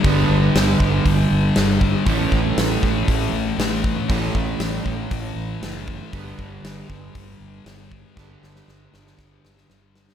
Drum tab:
HH |o---o---o---o---|o---o---o---o---|o---o---o---o---|o---o---o---o---|
SD |----o-------o---|----o-------o---|----o-------o---|----o-------o---|
BD |o-----o-o-----o-|o-o---o-o-----o-|o-o---o-o-----o-|o-o---o-o-----o-|

HH |----------------|
SD |o-ooo-ooo-ooo-oo|
BD |o-------o-------|